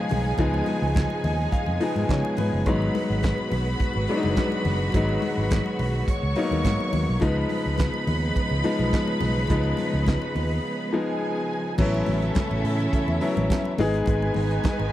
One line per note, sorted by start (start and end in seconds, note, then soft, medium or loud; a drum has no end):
0.00 7.19 B2 medium
0.00 2.62 C#3 medium
0.00 0.38 F3 medium
0.00 2.62 F3 medium
0.00 0.39 G#3 medium
0.00 7.18 G#3 medium
0.00 0.39 B3 medium
0.00 0.40 D#4 loud
0.00 2.62 D#4 medium
0.00 0.23 F4 loud
0.00 2.63 G#4 medium
0.00 2.63 G#5 loud
0.09 0.33 B1 medium
0.09 open hi-hat medium
0.09 high conga medium
0.09 low conga medium
0.38 0.61 C#2 loud
0.38 1.26 F3 medium
0.38 1.26 G#3 medium
0.38 1.27 B3 medium
0.38 1.27 D#4 loud
0.38 kick loud
0.38 closed hi-hat medium
0.38 muted conga soft
0.38 low conga medium
0.54 muted conga soft
0.66 open hi-hat medium
0.66 high conga medium
0.82 1.04 C#2 medium
0.95 kick loud
0.95 snare loud
0.95 clap loud
0.95 closed hi-hat medium
0.95 high conga medium
1.10 muted conga soft
1.24 1.46 D#2 medium
1.24 1.51 D#5 medium
1.24 open hi-hat medium
1.24 low conga medium
1.52 1.79 F5 medium
1.52 kick loud
1.52 closed hi-hat medium
1.52 muted conga soft
1.66 1.78 F2 medium
1.66 muted conga soft
1.80 2.47 F3 medium
1.80 2.47 G#3 medium
1.80 2.47 B3 medium
1.80 2.48 D#4 medium
1.80 2.07 D#5 medium
1.80 open hi-hat medium
1.96 2.06 G#2 medium
1.96 high conga medium
2.09 2.21 C#3 medium
2.09 2.36 C#5 medium
2.09 kick loud
2.09 snare loud
2.09 clap medium
2.09 closed hi-hat medium
2.09 high conga medium
2.25 muted conga soft
2.37 2.50 G#2 medium
2.37 2.64 B4 medium
2.37 open hi-hat medium
2.37 high conga medium
2.37 low conga medium
2.53 2.66 F#1 medium
2.65 2.88 G#1 medium
2.65 7.18 D#3 medium
2.65 7.18 F#3 medium
2.65 3.54 F#3 medium
2.65 3.54 G#3 medium
2.65 3.55 B3 medium
2.65 3.55 D#4 loud
2.65 7.18 F#4 medium
2.65 6.05 B4 medium
2.65 6.04 B5 medium
2.65 kick loud
2.65 closed hi-hat medium
2.65 muted conga soft
2.65 low conga medium
2.82 muted conga soft
2.94 open hi-hat medium
2.94 high conga medium
3.10 3.32 G#1 medium
3.23 kick loud
3.23 snare loud
3.23 clap loud
3.23 closed hi-hat medium
3.23 high conga medium
3.38 muted conga soft
3.51 3.74 B1 medium
3.51 open hi-hat medium
3.51 low conga medium
3.80 kick loud
3.80 closed hi-hat medium
3.80 muted conga soft
3.94 4.06 G#1 medium
3.94 muted conga soft
4.07 4.75 F#3 medium
4.07 4.75 G#3 medium
4.07 4.76 B3 medium
4.07 4.16 D4 medium
4.07 open hi-hat medium
4.17 4.79 D#4 loud
4.23 4.34 F#1 medium
4.23 high conga medium
4.37 kick loud
4.37 snare loud
4.37 clap medium
4.37 closed hi-hat medium
4.37 muted conga soft
4.37 high conga medium
4.52 muted conga soft
4.65 4.88 F#1 medium
4.65 snare soft
4.65 open hi-hat medium
4.65 high conga medium
4.65 low conga medium
4.92 5.16 G#1 medium
4.92 5.82 F#3 medium
4.92 5.83 G#3 medium
4.92 5.83 B3 medium
4.92 kick loud
4.92 closed hi-hat medium
4.92 muted conga soft
4.92 low conga medium
4.96 5.83 D#4 medium
5.09 muted conga soft
5.22 open hi-hat medium
5.22 high conga medium
5.38 5.60 G#1 medium
5.51 kick loud
5.51 snare loud
5.51 clap loud
5.51 closed hi-hat medium
5.51 muted conga soft
5.51 high conga medium
5.66 muted conga soft
5.79 6.02 B1 medium
5.79 open hi-hat medium
5.79 low conga medium
6.08 7.21 C#5 medium
6.08 7.20 C#6 medium
6.08 kick loud
6.08 closed hi-hat medium
6.08 muted conga soft
6.23 6.34 C#2 medium
6.35 7.03 F#3 medium
6.35 7.03 A#3 medium
6.35 7.03 B3 medium
6.35 7.04 D#4 medium
6.35 open hi-hat medium
6.51 6.62 D#2 medium
6.51 high conga medium
6.65 6.77 G#2 loud
6.65 kick loud
6.65 snare loud
6.65 clap medium
6.65 closed hi-hat medium
6.65 muted conga soft
6.65 high conga medium
6.80 muted conga soft
6.93 7.05 D#2 medium
6.93 open hi-hat medium
6.93 high conga medium
6.93 low conga medium
7.09 7.19 B1 medium
7.20 7.44 C#2 loud
7.20 11.74 C#3 medium
7.20 11.74 F3 medium
7.20 8.10 F3 medium
7.20 11.74 G#3 medium
7.20 8.10 G#3 medium
7.20 9.47 B3 medium
7.20 8.10 B3 medium
7.20 11.74 D#4 medium
7.20 8.10 D#4 loud
7.20 kick loud
7.20 closed hi-hat medium
7.20 low conga medium
7.24 10.90 B4 medium
7.24 10.90 B5 medium
7.49 open hi-hat medium
7.49 high conga medium
7.66 7.88 C#2 medium
7.78 kick loud
7.78 snare loud
7.78 clap loud
7.78 closed hi-hat medium
7.78 high conga medium
7.94 muted conga soft
8.07 8.30 D#2 medium
8.07 open hi-hat medium
8.07 low conga medium
8.36 kick loud
8.36 closed hi-hat medium
8.36 muted conga soft
8.50 8.62 C#2 medium
8.50 muted conga soft
8.64 9.31 F3 medium
8.64 9.31 G#3 medium
8.64 9.31 B3 medium
8.64 9.32 D#4 medium
8.64 open hi-hat medium
8.79 8.90 B1 medium
8.79 high conga medium
8.92 kick loud
8.92 snare loud
8.92 clap medium
8.92 closed hi-hat medium
8.92 high conga medium
9.08 muted conga soft
9.21 9.44 B1 medium
9.21 snare soft
9.21 open hi-hat medium
9.21 high conga medium
9.21 low conga medium
9.47 9.73 C#2 loud
9.47 10.38 F3 medium
9.47 10.38 G#3 medium
9.47 10.39 B3 medium
9.47 10.39 D#4 medium
9.47 kick loud
9.47 closed hi-hat medium
9.47 muted conga soft
9.47 low conga medium
9.52 11.77 B3 medium
9.64 muted conga soft
9.77 open hi-hat medium
9.77 high conga medium
9.93 10.16 C#2 medium
10.06 kick loud
10.06 snare loud
10.06 clap loud
10.06 closed hi-hat medium
10.06 muted conga soft
10.06 high conga medium
10.22 muted conga soft
10.35 10.58 D#2 medium
10.35 open hi-hat medium
10.35 low conga medium
10.93 11.59 F3 medium
10.93 11.60 G#3 medium
10.93 11.60 B3 medium
10.93 11.60 D#4 medium
10.93 11.77 G#4 medium
10.93 11.77 G#5 medium
11.78 12.01 A1 loud
11.78 13.77 C#3 medium
11.78 13.77 E3 medium
11.78 12.67 F#3 medium
11.78 13.77 F#3 medium
11.78 13.77 A3 medium
11.78 12.67 B3 medium
11.78 12.67 C#4 medium
11.78 13.75 C#4 loud
11.78 13.77 E4 medium
11.78 12.68 E4 loud
11.78 13.75 A4 medium
11.78 13.75 E5 loud
11.78 kick loud
11.78 crash loud
11.78 muted conga soft
11.78 low conga medium
11.94 muted conga soft
12.06 12.30 A1 loud
12.06 open hi-hat medium
12.06 high conga medium
12.22 closed hi-hat soft
12.35 kick loud
12.35 snare loud
12.35 clap loud
12.35 closed hi-hat medium
12.35 high conga medium
12.51 12.62 A1 medium
12.51 muted conga soft
12.64 12.86 A2 medium
12.64 open hi-hat medium
12.80 closed hi-hat soft
12.93 kick loud
12.93 closed hi-hat medium
13.08 13.18 E2 medium
13.08 muted conga soft
13.21 13.78 F#3 medium
13.21 13.78 B3 medium
13.21 13.79 C#4 medium
13.21 13.79 E4 medium
13.21 open hi-hat medium
13.37 13.47 A1 medium
13.37 closed hi-hat soft
13.37 high conga medium
13.50 kick loud
13.50 snare loud
13.50 clap medium
13.50 closed hi-hat medium
13.50 muted conga soft
13.50 high conga medium
13.65 muted conga soft
13.78 14.01 G#1 medium
13.78 14.92 D#3 medium
13.78 14.92 G#3 medium
13.78 14.70 G#3 medium
13.78 14.92 B3 medium
13.78 14.71 B3 medium
13.78 14.92 D#4 medium
13.78 14.71 D#4 medium
13.78 14.71 G#4 loud
13.78 14.92 B4 medium
13.78 14.92 G#5 loud
13.78 open hi-hat medium
13.78 high conga medium
13.78 low conga medium
13.94 closed hi-hat soft
14.06 14.29 G#1 loud
14.06 kick loud
14.06 closed hi-hat medium
14.06 muted conga soft
14.06 low conga medium
14.22 muted conga soft
14.34 14.58 G#1 loud
14.34 open hi-hat medium
14.34 high conga medium
14.51 closed hi-hat soft
14.64 kick loud
14.64 snare loud
14.64 clap loud
14.64 closed hi-hat medium
14.64 high conga medium
14.79 14.90 G#1 medium
14.79 muted conga soft